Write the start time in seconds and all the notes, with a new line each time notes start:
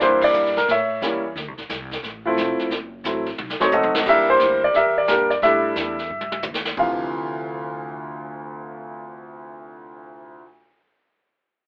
0.00 E2 G3 A#3 D4 E4 G4 C5, brush sweep, snare
0.22 D5, kick, crash
0.33 G2, hi-hat pedal
0.46 snare
0.56 A#4, snare
0.68 A2 C#5 E5, brush sweep, kick, snare
1.02 E2 G3 A#3 C#4 E4, kick, snare, hi-hat pedal
1.36 D2, brush sweep, kick, snare
1.48 C2
1.58 A1, snare
1.69 C2, kick, snare, hi-hat pedal
1.91 kick, snare
2.03 A1, brush sweep, kick, snare
2.26 F3 A3 C4 E4
2.37 F1, kick, snare, hi-hat pedal
2.58 muted upright bass stroke, snare
2.70 F#1, brush sweep, kick, snare
3.04 A1 F#3 A3 C4 E4, kick, snare, hi-hat pedal
3.26 snare
3.38 B1, mid tom
3.50 snare
3.60 F#3 A3 C4 D#4 C#5, muted upright bass stroke, snare
3.72 C#2 F#4 A4 D#5, floor tom, hi-hat pedal
3.83 B1, floor tom
3.94 A1, snare
4.06 E2 G3 A#3 D4 E4 G4 A#4 E5, brush sweep, kick, snare, crash
4.30 G4 C5
4.39 D2, snare, hi-hat pedal
4.64 D5
4.74 E2 G4 A#4 E5, brush sweep, kick, snare
4.98 D5
5.07 G2 G3 A#3 D4 G4 A#4, kick, snare, hi-hat pedal
5.30 D5, snare
5.42 A2 G3 A3 D4 E4 G4 E5, brush sweep, kick, snare
5.76 E2, snare, hi-hat pedal
5.99 snare
6.10 G2
6.21 mid tom
6.32 mid tom
6.42 D#2, hi-hat pedal, mid tom
6.54 snare
6.65 snare
6.77 D2 C3 E3 F3 F5, kick, open hi-hat